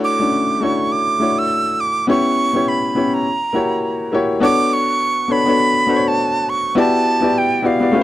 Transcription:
Already playing: A3 D4 E4 F#4 C#5
0.04 D6
0.19 A3 C#4 D4 E4 F#4
0.60 A3 D4 E4 F#4 C#5 C#6
0.92 D6
1.19 A3 D4 E4 F#4 C#5
1.39 E6
1.80 D6
2.07 B3 C#4 E4 G4 C#5 C#6
2.53 B3 C#4 E4 G4 C#5
2.68 B5
2.95 B3 C#4 E4 G4 C#5
3.14 A#5
3.53 A#3 E4 F#4 G4 C#5
4.12 A#3 E4 F#4 G4 C#5
4.40 B3 D4 F#4 A4 C#5 D6
4.73 C#6
5.28 B3 D4 F#4 A4 C#5 B5
5.46 B3 D4 F#4 A4 C#5
5.87 B3 D4 F#4 A4 C5
5.96 C#5
6.08 A5
6.49 C#6
6.75 B3 E4 F#4 G4 D5
6.79 A5
7.21 B3 E4 F#4 G4 D5
7.38 G5
7.62 B3 E4 F#4 G4 D5
7.66 F5
7.80 B3 E4 F#4 G4 D5
7.92 A3 C#4 F4 G4 B4

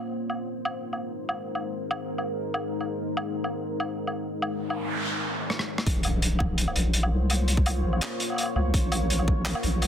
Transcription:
Already playing: C5
0.11 G#3 D#4 A#4
0.30 low woodblock
0.65 low woodblock
0.93 low woodblock
1.29 low woodblock
1.55 low woodblock
1.91 low woodblock
2.18 low woodblock
2.54 low woodblock
2.81 low woodblock
3.17 low woodblock
3.44 low woodblock
3.80 low woodblock
4.07 low woodblock
4.42 noise sweep, low woodblock
4.70 low woodblock
5.50 cross-stick
5.59 cross-stick
5.78 cross-stick
5.86 A#1 A#3 F4 C5 C#5, kick, closed hi-hat, impact
6.03 closed hi-hat, low woodblock
6.22 closed hi-hat
6.39 kick, low woodblock
6.58 closed hi-hat
6.68 low woodblock
6.76 A#1, closed hi-hat
6.93 closed hi-hat
7.03 low woodblock
7.12 C2
7.30 closed hi-hat, low woodblock
7.48 closed hi-hat
7.57 kick
7.66 closed hi-hat, low woodblock
7.84 A#1
7.93 low woodblock
8.01 clap, closed hi-hat
8.20 closed hi-hat
8.30 low woodblock
8.32 low woodblock
8.34 low woodblock
8.36 closed hi-hat, low woodblock
8.38 low woodblock
8.41 low woodblock
8.43 low woodblock
8.46 low woodblock
8.56 C#2, low woodblock
8.73 A#1 A#4, kick, closed hi-hat
8.92 closed hi-hat, low woodblock
9.10 closed hi-hat
9.19 low woodblock
9.28 kick
9.45 clap, closed hi-hat
9.55 low woodblock
9.63 A#1, closed hi-hat
9.82 closed hi-hat, low woodblock

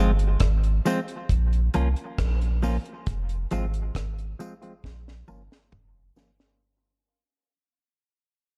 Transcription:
Already playing: G1 G#3 C4
0.00 F4
0.19 closed hi-hat
0.40 G#1, kick, cross-stick, closed hi-hat
0.64 closed hi-hat
0.85 F3 G#3 C4 F4, closed hi-hat, tambourine
1.08 closed hi-hat
1.29 A#1, kick, closed hi-hat
1.53 closed hi-hat
1.74 C2 F3 A#3 C#4 F4, closed hi-hat, tambourine, high woodblock
1.96 closed hi-hat
2.18 A#1, kick, cross-stick, closed hi-hat
2.41 closed hi-hat
2.62 F3 A#3 C#4 F4, open hi-hat, tambourine
2.86 closed hi-hat
3.06 F1, kick, closed hi-hat
3.29 closed hi-hat
3.51 G#1 F3 G#3 C4 F4, closed hi-hat, tambourine
3.74 closed hi-hat
3.95 G#1, kick, cross-stick, closed hi-hat
4.19 closed hi-hat
4.39 F3 G#3 C4 F4, closed hi-hat, tambourine
4.62 F3 G#3 C4 F4, closed hi-hat
4.84 A#1, kick, snare
5.08 snare
5.28 G1 F3 A#3 C#4 F4, tambourine, high woodblock
5.52 snare
5.72 F1, kick, mid tom
6.16 F3 A#3 C#4 F4, snare, tambourine
6.40 snare

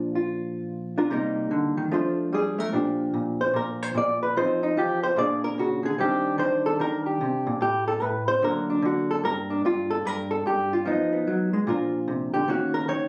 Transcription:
Already playing: A#2 F3 D4 F4
0.15 F4
0.98 D4 F4 A#4
1.10 C3 G3 A#3 D#4 A#4
1.51 D3
1.77 D#3
1.92 F3 A3 D4 F4 C5
2.33 G3 G#4
2.59 A3 A#4
2.72 A#2 F3 D4 G4
3.14 A#2
3.41 C5
3.54 A#2 A#4
3.83 C5
3.95 A#2 D5
4.23 B4
4.37 F3 C4 D#4 C5
4.63 D#4
4.77 F3 G4
5.03 C5
5.16 A#2 A#3 D4 G#4 D5
5.44 A#4
5.58 C#3 F#4
5.83 D3 G#4
5.98 D#3 G3 C4 D4 G4
6.38 D#3 C5
6.66 A4
6.80 D#3 A#4
7.06 G4
7.21 C3
7.47 A#2
7.61 A2 G4
7.88 A4
8.02 A2 B4
8.28 C5
8.42 D3 F#3 A#3 F#4 A#4
8.70 D4
8.82 D3 F#4
9.11 A4
9.24 G2 A#4
9.50 D4
9.65 G2 F4
9.90 A4
10.05 G2 A#4
10.31 A4
10.46 G2 G4
10.73 F4
10.85 F3 B3 D#4
11.13 B3
11.27 F#3
11.53 G#3
11.67 A#2 F3 D4 F4 A#4
12.08 C3
12.34 D3 G4
12.48 D#3 A#3 C#4 F#4
12.74 A#4
12.88 D#3 C#5

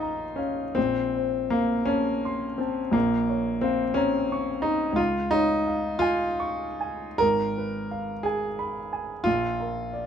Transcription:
Already playing: A#1 F3 D#4 F4 A#4 C#5 F5
0.02 A#5
0.36 C#4 F5
0.75 A#1 C4
1.17 C5
1.50 A#3 F5
1.85 C#4 A5
2.25 C6
2.58 C4 A5
2.91 A#1 A#3
3.29 C#5
3.61 C4 F5
3.94 C#4 A#5
4.32 C#6
4.62 D#4 A#5
4.93 C#2 F4
5.31 D#4 C#5
5.68 F5
5.99 F4 G#5
6.40 C#6
6.81 G#5
7.18 G#1 A#4
7.58 B4
7.91 F5
8.23 G#4 G#5
8.59 B5
8.93 G#5
9.24 A#1 F4
9.60 A#4
9.93 D5

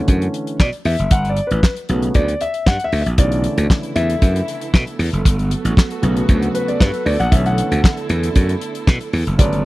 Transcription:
Already playing: D3 E3 A3 C#4
0.08 F#2, kick, closed hi-hat
0.22 closed hi-hat
0.34 closed hi-hat
0.47 closed hi-hat
0.60 B2 D5, kick, snare, clap
0.73 closed hi-hat
0.85 E2 E5, open hi-hat
0.99 F#1, closed hi-hat
1.11 G1 F#5, kick, closed hi-hat
1.25 closed hi-hat
1.30 D5
1.37 closed hi-hat
1.47 B4, closed hi-hat
1.51 A1
1.63 kick, snare, clap
1.76 closed hi-hat
1.89 B1 C#3 F#3 A3 B3, closed hi-hat
2.02 closed hi-hat
2.14 D2 D5, kick, closed hi-hat
2.28 closed hi-hat
2.41 E5, closed hi-hat
2.54 closed hi-hat
2.66 G2 F#5, kick, snare, clap
2.80 closed hi-hat
2.84 E5
2.92 D2, open hi-hat
3.02 E5
3.06 A#1, closed hi-hat
3.18 B1 C#3 D3 E3 A3 B3 E4 A4 D5, kick, closed hi-hat
3.32 closed hi-hat
3.44 closed hi-hat
3.58 D2, closed hi-hat
3.70 kick, snare, clap
3.83 closed hi-hat
3.96 E2 E5, closed hi-hat
4.10 closed hi-hat
4.22 F#2, kick, closed hi-hat
4.36 closed hi-hat
4.48 closed hi-hat
4.61 closed hi-hat
4.74 B2, kick, snare, clap
4.87 closed hi-hat
4.99 E2, open hi-hat
5.13 F#1, closed hi-hat
5.25 G1 F#3 F#4, kick, closed hi-hat
5.39 closed hi-hat
5.51 closed hi-hat
5.65 A1, closed hi-hat
5.77 kick, snare, clap
5.91 closed hi-hat
6.02 B1 C#3 F#3 A3 B3, closed hi-hat
6.17 closed hi-hat
6.29 D2, kick, closed hi-hat
6.42 closed hi-hat
6.54 B4, closed hi-hat
6.68 D5, closed hi-hat
6.80 G2 B4, kick, snare, clap
6.94 closed hi-hat
7.06 D2 D5, open hi-hat
7.20 A#1 F#5, closed hi-hat
7.31 B1 D3 E3 A3 C#4 E4 E5, kick, closed hi-hat
7.46 F#5, closed hi-hat
7.58 closed hi-hat
7.71 D2, closed hi-hat
7.84 kick, snare, clap
7.97 closed hi-hat
8.09 E2, closed hi-hat
8.23 closed hi-hat
8.35 F#2, kick, closed hi-hat
8.49 closed hi-hat
8.61 closed hi-hat
8.75 closed hi-hat
8.87 B2, kick, snare, clap
9.01 closed hi-hat
9.13 E2, open hi-hat
9.27 F#1, closed hi-hat
9.38 G1 C#3 F#3 A3 B3 F#4 D5, kick, closed hi-hat
9.53 closed hi-hat

